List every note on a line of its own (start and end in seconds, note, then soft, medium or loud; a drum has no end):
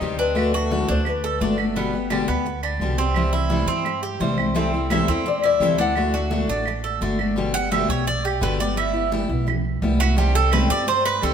0.00 0.83 D2 medium
0.00 0.18 C3 medium
0.00 0.18 D#3 medium
0.00 0.18 G3 medium
0.00 0.18 C4 medium
0.00 0.17 D#4 medium
0.00 0.17 G4 medium
0.00 0.20 D#5 loud
0.00 high conga soft
0.18 0.35 G3 soft
0.18 0.36 C4 soft
0.18 0.53 D4 medium
0.18 0.35 G4 soft
0.18 0.55 B4 medium
0.35 0.52 D3 medium
0.35 0.52 A3 medium
0.35 0.53 D4 medium
0.35 0.52 F#4 medium
0.35 high conga soft
0.35 claves medium
0.53 0.70 A3 soft
0.53 0.70 D4 soft
0.53 0.70 F#4 soft
0.53 0.88 F#4 medium
0.53 0.87 A4 medium
0.71 0.87 D3 medium
0.71 0.88 A3 medium
0.71 0.88 D4 medium
0.71 0.87 F#4 medium
0.71 high conga medium
0.88 1.37 D2 medium
0.88 1.05 A3 soft
0.88 1.22 D4 medium
0.88 1.06 D4 soft
0.88 1.05 F#4 soft
0.88 1.08 C5 medium
1.05 1.43 B4 medium
1.05 muted steel-string acoustic guitar stroke medium
1.05 high conga soft
1.05 claves medium
1.24 1.41 A4 medium
1.24 high conga soft
1.40 2.23 G1 medium
1.40 1.57 D3 medium
1.40 1.58 A3 medium
1.40 1.57 D4 medium
1.40 1.56 F#4 medium
1.40 1.67 A4 medium
1.40 1.75 D5 medium
1.40 high conga medium
1.57 1.76 A3 soft
1.57 1.75 D4 soft
1.57 1.75 F#4 soft
1.57 high conga medium
1.57 claves medium
1.76 1.92 B2 medium
1.76 1.93 D3 medium
1.76 1.93 G3 medium
1.76 2.10 B3 medium
1.76 1.93 B3 medium
1.76 1.92 G4 medium
1.76 high conga soft
1.93 2.10 G3 soft
1.93 2.11 B3 soft
1.93 2.10 G4 soft
1.93 high conga soft
2.10 2.27 B2 medium
2.10 2.28 D3 medium
2.10 2.28 G3 medium
2.10 2.28 B3 medium
2.10 2.27 D4 medium
2.10 2.27 G4 medium
2.10 high conga medium
2.10 claves medium
2.28 2.77 D2 medium
2.28 2.45 G3 soft
2.28 2.62 B3 medium
2.28 2.45 B3 soft
2.28 2.45 G4 soft
2.28 high conga soft
2.45 muted steel-string acoustic guitar stroke medium
2.45 high conga soft
2.63 2.97 D4 medium
2.63 high conga soft
2.63 claves medium
2.80 3.62 C2 medium
2.80 2.98 B2 medium
2.80 2.98 D3 medium
2.80 2.98 G3 medium
2.80 2.98 B3 medium
2.80 2.97 G4 medium
2.80 high conga soft
2.98 3.15 G3 soft
2.98 3.15 B3 soft
2.98 3.32 C4 medium
2.98 3.15 G4 soft
3.14 3.32 C3 medium
3.14 3.32 E3 medium
3.14 3.32 G3 medium
3.14 3.32 C4 medium
3.14 3.31 E4 medium
3.14 high conga soft
3.14 claves medium
3.32 3.50 G3 soft
3.32 3.50 C4 soft
3.32 3.49 E4 soft
3.32 3.67 E4 medium
3.32 high conga soft
3.50 3.67 C3 medium
3.50 3.67 E3 medium
3.50 3.68 G3 medium
3.50 3.68 C4 medium
3.50 3.67 E4 medium
3.50 high conga medium
3.67 4.16 G2 medium
3.67 3.84 G3 soft
3.67 4.02 C4 medium
3.67 3.85 C4 soft
3.67 3.85 E4 soft
3.67 high conga soft
3.85 muted steel-string acoustic guitar stroke soft
3.85 high conga soft
3.85 claves medium
4.03 4.20 G4 medium
4.03 high conga soft
4.20 5.02 C2 medium
4.20 4.37 C3 medium
4.20 4.37 E3 medium
4.20 4.38 G3 medium
4.20 4.37 C4 medium
4.20 4.36 E4 medium
4.20 4.55 C5 medium
4.20 high conga medium
4.37 4.54 G3 soft
4.37 4.55 C4 soft
4.37 4.54 E4 soft
4.37 high conga medium
4.37 claves medium
4.55 4.72 C3 medium
4.55 4.72 E3 medium
4.55 4.72 G3 medium
4.55 4.90 C4 medium
4.55 4.72 C4 medium
4.55 4.72 E4 medium
4.55 4.72 A4 medium
4.55 4.92 C5 medium
4.55 high conga soft
4.73 4.90 G3 soft
4.73 4.90 C4 soft
4.73 4.90 E4 soft
4.73 4.90 A4 medium
4.90 5.07 C3 medium
4.90 5.08 E3 medium
4.90 5.08 G3 medium
4.90 5.08 C4 medium
4.90 5.08 E4 medium
4.90 5.07 A4 medium
4.90 5.27 E5 medium
4.90 high conga medium
4.90 claves medium
5.08 5.57 E2 medium
5.08 5.25 G3 soft
5.08 5.42 C4 medium
5.08 5.25 C4 soft
5.08 5.25 E4 soft
5.08 5.25 A4 soft
5.26 5.44 D5 medium
5.26 muted steel-string acoustic guitar stroke medium
5.26 high conga soft
5.42 5.77 E4 medium
5.42 5.63 D5 medium
5.42 high conga soft
5.42 claves medium
5.60 6.42 D2 medium
5.60 5.77 C3 medium
5.60 5.77 E3 medium
5.60 5.78 G3 medium
5.60 5.78 C4 medium
5.60 5.77 E4 medium
5.60 5.77 A4 medium
5.60 5.79 E5 medium
5.60 high conga soft
5.78 5.96 G3 soft
5.78 5.96 C4 soft
5.78 6.12 D4 medium
5.78 5.95 E4 soft
5.78 5.95 A4 soft
5.78 6.98 F#5 loud
5.78 high conga medium
5.96 6.13 D3 medium
5.96 6.13 A3 medium
5.96 6.13 D4 medium
5.96 6.12 F#4 medium
5.96 high conga soft
5.96 claves medium
6.13 6.30 A3 soft
6.13 6.31 D4 soft
6.13 6.30 F#4 soft
6.13 6.48 F#4 medium
6.13 high conga soft
6.30 6.48 D3 medium
6.30 6.48 A3 medium
6.30 6.48 D4 medium
6.30 6.48 F#4 medium
6.30 high conga medium
6.48 6.97 A1 medium
6.48 6.67 A3 soft
6.48 6.83 D4 medium
6.48 6.66 D4 soft
6.48 6.65 F#4 soft
6.48 high conga soft
6.66 muted steel-string acoustic guitar stroke soft
6.66 high conga soft
6.66 claves medium
6.84 7.01 A4 medium
6.84 high conga soft
7.01 7.83 G1 medium
7.01 7.18 D3 medium
7.01 7.18 A3 medium
7.01 7.19 D4 medium
7.01 7.18 F#4 medium
7.01 7.36 D5 medium
7.01 high conga medium
7.19 7.37 A3 soft
7.19 7.36 D4 soft
7.19 7.36 F#4 soft
7.19 high conga medium
7.19 claves medium
7.36 7.53 B2 medium
7.36 7.53 D3 medium
7.36 7.54 G3 medium
7.36 7.54 B3 medium
7.36 7.53 G4 medium
7.54 7.71 G3 soft
7.54 7.72 B3 soft
7.54 7.71 G4 soft
7.54 7.71 F#5 medium
7.54 high conga soft
7.71 7.88 B2 medium
7.71 7.89 D3 medium
7.71 7.89 G3 medium
7.71 7.89 B3 medium
7.71 7.88 G4 medium
7.71 7.89 E5 medium
7.71 high conga medium
7.71 claves medium
7.89 8.38 B1 medium
7.89 8.06 G3 soft
7.89 8.06 B3 soft
7.89 8.06 G4 soft
7.89 8.06 C#5 medium
7.89 high conga soft
8.07 8.24 D5 medium
8.07 muted steel-string acoustic guitar stroke medium
8.07 high conga soft
8.25 8.42 G4 medium
8.25 claves medium
8.41 9.24 G1 medium
8.41 8.58 B2 medium
8.41 8.58 D3 medium
8.41 8.59 G3 medium
8.41 8.59 B3 medium
8.41 8.57 G4 medium
8.41 8.59 B4 medium
8.41 high conga soft
8.59 8.75 G3 soft
8.59 8.76 B3 soft
8.59 8.76 G4 soft
8.59 8.77 D5 medium
8.59 high conga medium
8.76 8.93 G3 medium
8.76 8.94 B3 medium
8.76 8.92 E4 medium
8.76 9.10 E5 medium
8.76 high conga soft
8.76 claves medium
8.93 9.12 B3 soft
8.93 9.11 E4 medium
8.93 high conga soft
9.12 9.29 G3 medium
9.12 9.29 B3 medium
9.12 9.28 E4 medium
9.12 high conga medium
9.29 9.78 B1 medium
9.29 9.46 B3 soft
9.29 9.46 E4 soft
9.29 high conga soft
9.47 muted steel-string acoustic guitar stroke medium
9.47 high conga soft
9.47 low conga medium
9.47 claves medium
9.65 high conga soft
9.82 10.64 C2 medium
9.82 9.99 G3 medium
9.82 10.00 B3 medium
9.82 9.98 E4 medium
9.82 high conga medium
9.99 10.17 B3 soft
9.99 10.16 E4 soft
9.99 10.17 F#4 medium
9.99 high conga medium
9.99 claves medium
10.16 10.34 C3 medium
10.16 10.34 D#3 medium
10.16 10.34 G3 medium
10.16 10.34 C4 medium
10.16 10.35 G4 medium
10.16 10.33 G4 medium
10.16 high conga soft
10.35 10.51 G3 soft
10.35 10.52 C4 soft
10.35 10.52 G4 soft
10.35 10.52 A4 medium
10.35 high conga soft
10.52 10.69 C3 medium
10.52 10.69 D#3 medium
10.52 10.69 G3 medium
10.52 10.69 C4 medium
10.52 10.69 G4 medium
10.52 10.70 B4 medium
10.52 high conga medium
10.52 claves medium
10.70 11.19 G2 medium
10.70 10.87 G3 soft
10.70 10.87 C4 soft
10.70 10.87 G4 soft
10.70 10.87 D5 loud
10.70 high conga soft
10.87 11.05 C5 medium
10.87 muted steel-string acoustic guitar stroke medium
10.87 high conga soft
11.05 11.22 B4 medium
11.05 high conga soft
11.05 claves medium
11.22 11.34 D2 medium
11.22 11.34 C3 medium
11.22 11.34 D#3 medium
11.22 11.34 G3 medium
11.22 11.34 C4 medium
11.22 11.34 G4 medium
11.22 11.34 A4 medium
11.22 high conga soft